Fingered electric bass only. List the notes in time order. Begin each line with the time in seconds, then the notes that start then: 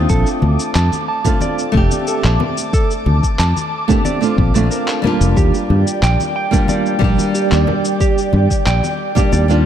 0.10 A#1
0.42 D2
0.75 F2
1.75 F1
2.24 A#1
3.06 D2
3.39 F2
4.38 A#1
4.55 A#1
5.21 F1
5.37 D#2
5.70 G2
6.02 A#1
7.02 A#1
7.52 D#2
8.33 G2
8.67 A#1
9.33 D#2